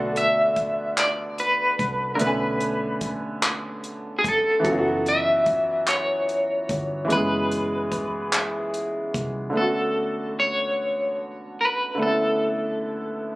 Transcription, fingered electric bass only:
Already playing: B1
1.80 C2
2.21 B1
4.65 F#1
6.70 G1
7.12 F#1
9.15 C2

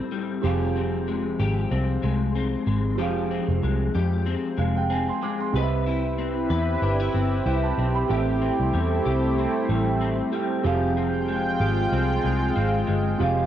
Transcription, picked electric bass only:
0.44 F1
1.40 G#1
1.71 C2
2.04 C2
2.67 G#1
2.99 F1
3.48 F1
3.63 C2
3.95 F2
4.58 F1
5.54 C2
6.50 E2
6.82 G1
7.14 G1
7.46 C2
7.78 B1
8.10 A1
8.60 C2
8.74 E2
9.06 C2
9.69 A1
10.65 F1
11.60 G#1
11.92 C2
12.24 C2
12.57 G#1
12.88 G1
13.20 F1

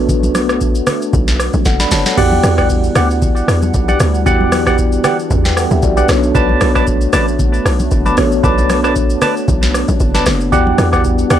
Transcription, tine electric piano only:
Already playing: B3 D4 F#4 A4 B4
1.65 A4 F#5
1.80 D5 B5
1.92 C#5 A5
2.06 A4 F#5
2.17 B3 E4 F#4 G4 D5
4.25 B3 E4 F#4 G4 D5
5.45 B4 G5
5.57 A4 F#5
5.71 G4 E5
5.83 F#4 D5
5.97 D4 B4
6.08 B3 C#4 F#4 A4 C#5
6.15 D4
8.17 B3 D4 F#4 A4 C#5
10.51 B3 E4 F#4 G4 D5

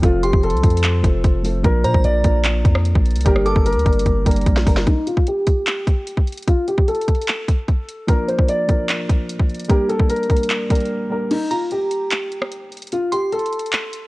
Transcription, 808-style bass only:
0.03 F1
0.33 F1
0.54 C2
0.64 F2
1.04 F1
1.24 F1
1.64 A#1
1.84 A#2
1.94 A#1
2.05 A#1
2.25 A#1
2.65 F2
2.95 A#1
3.15 C2
3.25 G1
3.56 G1
3.76 D2
3.86 G1
4.06 G1
4.26 G1
4.46 A#1
4.66 G1

